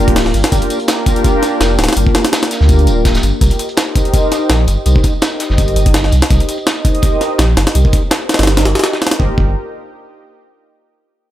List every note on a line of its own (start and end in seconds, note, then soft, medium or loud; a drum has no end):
0.00 0.33 D1 medium
0.00 0.50 A#3 loud
0.00 0.50 D4 loud
0.00 0.50 F4 loud
0.00 0.50 G4 loud
0.00 0.50 A#4 loud
0.00 downlifter medium
0.08 kick medium
0.08 closed hi-hat medium
0.16 snare loud
0.16 closed hi-hat medium
0.16 open hi-hat medium
0.26 snare medium
0.34 0.43 G1 medium
0.34 closed hi-hat medium
0.34 tambourine medium
0.44 snare loud
0.44 closed hi-hat medium
0.52 0.61 G1 loud
0.52 0.78 A#3 medium
0.52 0.78 D4 medium
0.52 0.78 F4 medium
0.52 0.78 G4 medium
0.52 0.78 A#4 medium
0.52 kick loud
0.52 closed hi-hat medium
0.52 tambourine medium
0.62 closed hi-hat soft
0.70 closed hi-hat medium
0.70 tambourine medium
0.80 1.95 A#3 loud
0.80 1.95 D4 loud
0.80 1.95 F4 loud
0.80 1.95 G4 loud
0.80 1.95 A#4 loud
0.80 closed hi-hat soft
0.88 snare loud
0.88 closed hi-hat medium
0.88 tambourine medium
1.06 kick loud
1.06 closed hi-hat medium
1.06 tambourine medium
1.16 closed hi-hat soft
1.24 kick loud
1.24 closed hi-hat medium
1.24 tambourine medium
1.43 snare soft
1.43 closed hi-hat medium
1.43 tambourine medium
1.60 1.77 F1 medium
1.60 snare loud
1.60 closed hi-hat medium
1.60 tambourine medium
1.79 1.87 D1 loud
1.79 snare medium
1.79 closed hi-hat medium
1.79 tambourine medium
1.84 snare medium
1.84 closed hi-hat medium
1.89 snare medium
1.89 closed hi-hat medium
1.93 2.05 G1 loud
1.93 snare medium
1.93 closed hi-hat medium
1.93 tambourine medium
1.97 2.22 A#3 medium
1.97 2.22 D4 medium
1.97 2.22 F4 medium
1.97 2.22 G4 medium
1.97 2.22 A#4 medium
1.97 closed hi-hat medium
2.07 kick loud
2.15 snare loud
2.15 closed hi-hat medium
2.15 tambourine medium
2.24 3.39 A#3 loud
2.24 3.39 D4 loud
2.24 3.39 F4 loud
2.24 3.39 G4 loud
2.24 3.39 A#4 loud
2.24 snare loud
2.24 closed hi-hat medium
2.33 snare loud
2.33 closed hi-hat medium
2.33 tambourine medium
2.43 snare medium
2.43 closed hi-hat medium
2.51 snare soft
2.51 closed hi-hat medium
2.51 tambourine medium
2.61 2.88 D2 medium
2.61 snare soft
2.69 kick loud
2.69 closed hi-hat medium
2.69 tambourine medium
2.79 closed hi-hat soft
2.87 3.22 D1 medium
2.87 closed hi-hat medium
2.87 tambourine medium
3.05 kick loud
3.05 snare loud
3.05 closed hi-hat medium
3.05 tambourine medium
3.14 snare loud
3.14 closed hi-hat soft
3.14 tambourine medium
3.23 3.32 G1 medium
3.23 closed hi-hat medium
3.23 tambourine medium
3.41 3.50 C2 medium
3.41 3.67 D#4 medium
3.41 3.67 G4 medium
3.41 3.67 A#4 medium
3.41 3.67 C5 medium
3.41 3.67 D#5 medium
3.41 kick loud
3.41 closed hi-hat medium
3.41 tambourine medium
3.50 closed hi-hat soft
3.59 closed hi-hat medium
3.59 tambourine medium
3.69 4.84 D#4 loud
3.69 4.84 G4 loud
3.69 4.84 A#4 loud
3.69 4.84 C5 loud
3.69 4.84 D#5 loud
3.69 closed hi-hat soft
3.77 snare loud
3.77 closed hi-hat medium
3.77 tambourine medium
3.95 kick loud
3.95 closed hi-hat medium
3.95 tambourine medium
4.05 closed hi-hat soft
4.14 kick loud
4.14 closed hi-hat medium
4.14 tambourine medium
4.32 snare soft
4.32 closed hi-hat medium
4.32 tambourine medium
4.49 4.66 A#1 medium
4.49 snare loud
4.49 closed hi-hat medium
4.49 tambourine medium
4.67 4.77 G1 medium
4.67 closed hi-hat medium
4.67 tambourine medium
4.86 4.95 C2 loud
4.86 5.11 D#4 medium
4.86 5.11 G4 medium
4.86 5.11 A#4 medium
4.86 5.11 C5 medium
4.86 5.11 D#5 medium
4.86 closed hi-hat medium
4.86 tambourine medium
4.96 kick loud
5.03 kick medium
5.03 closed hi-hat medium
5.03 tambourine medium
5.14 6.28 D#4 loud
5.14 6.29 G4 loud
5.14 6.28 A#4 loud
5.14 6.28 C5 loud
5.14 6.28 D#5 loud
5.22 snare loud
5.22 closed hi-hat medium
5.22 tambourine loud
5.39 snare medium
5.39 closed hi-hat medium
5.39 tambourine medium
5.50 5.76 G1 medium
5.50 snare soft
5.58 kick medium
5.58 closed hi-hat medium
5.58 tambourine medium
5.68 closed hi-hat soft
5.76 6.11 G1 medium
5.76 closed hi-hat medium
5.76 tambourine medium
5.86 kick loud
5.86 closed hi-hat medium
5.94 snare loud
5.94 closed hi-hat medium
5.94 open hi-hat medium
6.04 snare medium
6.12 6.21 C2 medium
6.12 closed hi-hat medium
6.12 tambourine medium
6.22 snare loud
6.22 closed hi-hat medium
6.30 6.39 C2 loud
6.30 6.56 D#4 medium
6.30 6.56 G4 medium
6.30 6.56 A#4 medium
6.30 6.56 C5 medium
6.30 6.56 D#5 medium
6.30 kick loud
6.30 closed hi-hat medium
6.30 tambourine medium
6.40 closed hi-hat soft
6.49 closed hi-hat medium
6.49 tambourine medium
6.58 7.73 D#4 loud
6.58 7.73 G4 loud
6.58 7.73 A#4 loud
6.58 7.73 C5 loud
6.58 7.73 D#5 loud
6.58 closed hi-hat soft
6.67 snare loud
6.67 closed hi-hat medium
6.67 tambourine medium
6.85 kick loud
6.85 closed hi-hat medium
6.85 tambourine medium
6.95 closed hi-hat soft
7.02 kick loud
7.02 closed hi-hat medium
7.02 tambourine medium
7.21 snare soft
7.21 closed hi-hat medium
7.21 tambourine medium
7.38 7.55 A#1 medium
7.38 snare loud
7.38 closed hi-hat medium
7.38 tambourine medium
7.57 7.66 G1 loud
7.57 snare loud
7.57 closed hi-hat medium
7.57 tambourine medium
7.67 snare loud
7.67 closed hi-hat medium
7.75 7.84 C2 medium
7.75 8.00 D#4 medium
7.75 8.00 G4 medium
7.75 8.01 A#4 medium
7.75 8.00 C5 medium
7.75 8.01 D#5 medium
7.75 closed hi-hat medium
7.75 tambourine loud
7.85 kick loud
7.93 kick loud
7.93 closed hi-hat medium
7.93 tambourine medium
8.03 9.18 D#4 loud
8.03 9.18 G4 loud
8.03 9.18 A#4 loud
8.03 9.18 C5 loud
8.03 9.18 D#5 loud
8.11 snare loud
8.11 closed hi-hat medium
8.11 tambourine medium
8.29 snare medium
8.29 closed hi-hat medium
8.29 tambourine medium
8.34 snare medium
8.34 closed hi-hat medium
8.39 8.65 G1 medium
8.39 snare medium
8.39 snare soft
8.39 closed hi-hat medium
8.43 snare medium
8.43 closed hi-hat medium
8.43 tambourine medium
8.47 snare loud
8.47 closed hi-hat medium
8.57 snare loud
8.57 closed hi-hat medium
8.64 8.74 G1 medium
8.64 snare loud
8.64 closed hi-hat medium
8.64 tambourine medium
8.75 snare medium
8.75 closed hi-hat medium
8.79 snare medium
8.79 closed hi-hat medium
8.79 tambourine medium
8.84 snare loud
8.84 closed hi-hat medium
8.93 snare medium
8.93 snare loud
8.93 tambourine medium
9.01 snare medium
9.01 closed hi-hat medium
9.01 tambourine medium
9.07 snare medium
9.07 closed hi-hat medium
9.11 snare loud
9.11 closed hi-hat soft
9.11 closed hi-hat medium
9.20 9.30 G1 medium
9.20 9.33 A#3 medium
9.20 9.33 D4 medium
9.20 9.33 F4 medium
9.20 9.33 G4 medium
9.20 9.33 A#4 loud
9.20 kick loud
9.38 9.55 G1 loud
9.38 kick loud